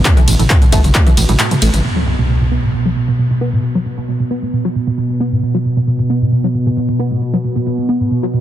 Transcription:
0.00 1.83 B2 medium
0.05 0.14 A2 medium
0.05 kick loud
0.05 clap loud
0.05 closed hi-hat loud
0.05 tambourine soft
0.17 0.20 E3 loud
0.17 closed hi-hat soft
0.17 mid tom medium
0.17 tambourine soft
0.28 0.35 A1 loud
0.28 0.31 A2 medium
0.28 open hi-hat loud
0.28 ride medium
0.28 tambourine medium
0.39 0.46 A1 medium
0.39 0.42 A2 loud
0.39 closed hi-hat medium
0.39 mid tom medium
0.39 tambourine soft
0.50 0.59 A2 medium
0.50 kick loud
0.50 clap loud
0.50 closed hi-hat loud
0.50 tambourine soft
0.62 0.65 A2 medium
0.62 closed hi-hat medium
0.62 mid tom medium
0.62 tambourine soft
0.72 0.80 A1 loud
0.72 0.81 A3 loud
0.72 kick medium
0.72 open hi-hat medium
0.72 ride medium
0.72 tambourine medium
0.84 0.91 G1 medium
0.84 0.92 G2 medium
0.84 closed hi-hat medium
0.84 mid tom medium
0.84 tambourine soft
0.95 1.03 A2 medium
0.95 kick loud
0.95 clap loud
0.95 closed hi-hat loud
0.95 tambourine soft
1.07 1.10 E3 loud
1.07 closed hi-hat medium
1.07 mid tom medium
1.07 tambourine soft
1.17 1.25 A1 loud
1.17 1.21 A2 medium
1.17 open hi-hat loud
1.17 ride medium
1.17 tambourine medium
1.29 1.36 A1 medium
1.29 1.32 A2 loud
1.29 closed hi-hat medium
1.29 mid tom medium
1.29 tambourine soft
1.40 1.48 A2 medium
1.40 clap loud
1.40 closed hi-hat medium
1.40 tambourine soft
1.51 1.55 A2 medium
1.51 closed hi-hat medium
1.51 mid tom medium
1.51 tambourine soft
1.62 1.70 A1 medium
1.62 1.71 A3 loud
1.62 open hi-hat medium
1.62 ride medium
1.62 tambourine medium
1.74 1.81 A1 medium
1.74 1.82 G2 medium
1.74 closed hi-hat medium
1.74 mid tom medium
1.74 tambourine soft
1.84 1.93 B2 medium
1.84 8.41 B2 medium
1.84 impact medium
1.96 1.99 F#3 loud
2.07 2.10 B2 medium
2.19 2.22 B2 loud
2.29 2.38 B2 medium
2.41 2.44 B2 medium
2.52 2.60 B3 loud
2.63 2.71 A2 medium
2.74 2.82 B2 medium
2.86 2.89 F#3 loud
2.96 3.00 B2 medium
3.08 3.11 B2 loud
3.19 3.27 B2 medium
3.31 3.34 B2 medium
3.41 3.50 B3 loud
3.53 3.61 A2 medium
3.63 3.72 B2 medium
3.75 3.78 F#3 loud
3.86 3.89 B2 medium
3.98 4.01 B2 loud
4.08 4.17 B2 medium
4.20 4.23 B2 medium
4.31 4.39 B3 medium
4.42 4.50 A2 medium
4.53 4.62 B2 medium
4.65 4.68 F#3 loud
4.76 4.79 B2 medium
4.87 4.90 B2 loud
4.98 5.06 B2 medium
5.10 5.13 B2 medium
5.20 5.29 B3 loud
5.32 5.40 A2 medium
5.43 5.51 B2 medium
5.54 5.58 F#3 loud
5.65 5.68 B2 medium
5.77 5.80 B2 loud
5.87 5.96 B2 medium
5.99 6.02 B2 medium
6.10 6.18 B3 medium
6.22 6.29 A2 medium
6.32 6.41 B2 medium
6.44 6.47 F#3 loud
6.55 6.58 B2 medium
6.66 6.69 B2 loud
6.77 6.86 B2 medium
6.89 6.92 B2 medium
6.99 7.08 B3 medium
7.11 7.19 A2 medium
7.22 7.30 B2 medium
7.34 7.37 F#3 loud
7.44 7.48 B2 medium
7.56 7.59 B2 loud
7.66 7.75 B2 medium
7.78 7.81 B2 medium
7.89 7.97 B3 medium
8.01 8.08 A2 medium
8.11 8.20 B2 medium
8.23 8.26 F#3 loud
8.34 8.37 B2 medium

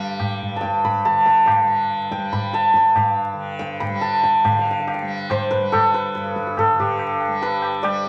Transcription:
0.00 0.48 G2 medium
0.00 1.06 D3 medium
0.00 1.62 G3 medium
0.00 1.46 F5 medium
0.00 0.60 G5 medium
0.00 0.39 A5 medium
0.20 tabla na medium
0.20 tabla ge medium
0.42 tabla ge medium
0.48 2.76 G2 medium
0.56 1.05 A5 medium
0.61 1.25 G5 medium
0.61 tabla ke medium
0.85 2.32 B5 medium
0.85 tabla tin medium
0.85 tabla ge medium
1.05 3.33 D3 medium
1.05 2.54 A5 medium
1.05 tabla te medium
1.26 2.11 G5 medium
1.26 tabla ke medium
1.46 2.96 F5 medium
1.46 tabla na medium
1.46 tabla ge medium
1.62 2.17 G3 soft
2.11 2.76 G5 medium
2.11 tabla ke medium
2.17 3.89 G3 medium
2.32 3.80 B5 medium
2.32 tabla tin medium
2.32 tabla ge medium
2.53 4.01 A5 medium
2.53 tabla te medium
2.74 6.15 G2 medium
2.74 3.59 G5 medium
2.74 tabla ke medium
2.96 4.45 F5 medium
2.96 tabla na medium
2.96 tabla ge medium
3.33 4.47 D3 medium
3.59 4.23 G5 medium
3.59 tabla ke medium
3.80 5.37 B5 medium
3.80 tabla tin medium
3.80 tabla ge medium
3.89 5.02 G3 medium
4.01 5.94 A5 medium
4.01 tabla te medium
4.23 6.30 G5 medium
4.23 tabla ke medium
4.45 6.72 D3 medium
4.45 4.52 F5 medium
4.45 tabla na medium
4.45 tabla ge medium
4.52 4.59 F5 medium
4.59 4.65 F5 medium
4.65 4.70 F5 medium
4.71 4.79 F5 medium
4.80 4.87 F5 medium
4.87 4.94 F5 medium
4.87 tabla na medium
4.94 7.17 F5 medium
5.02 5.58 G3 medium
5.30 5.57 C5 medium
5.30 tabla na medium
5.30 tabla ge medium
5.51 5.94 B4 medium
5.51 tabla ge medium
5.58 7.28 G3 medium
5.72 6.58 A4 medium
5.72 tabla na medium
5.72 tabla ge medium
5.94 7.42 B4 medium
6.15 8.09 G2 medium
6.15 tabla te medium
6.26 tabla te medium
6.36 tabla ke medium
6.47 tabla te medium
6.57 8.09 A4 medium
6.57 tabla na medium
6.57 tabla ge medium
6.72 8.09 D3 medium
6.79 8.09 G4 medium
6.79 tabla ge medium
6.99 tabla na medium
7.21 tabla na medium
7.28 7.84 G3 medium
7.42 8.09 B4 medium
7.42 tabla tin medium
7.62 tabla na medium
7.83 8.09 G3 medium
7.83 8.09 D5 loud
7.83 tabla na medium

